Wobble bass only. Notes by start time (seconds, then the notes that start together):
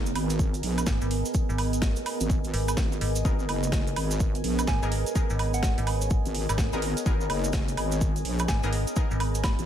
Already playing: F#1
0.15 G#1
0.63 A#1
2.21 G#1
2.44 G#1
2.77 G#1
3.25 G#1
3.49 F#1
3.96 G#1
4.44 A#1
6.25 G#1
6.73 G#1
7.06 G#1
7.30 F#1
7.77 G#1
8.25 A#1
9.59 G#1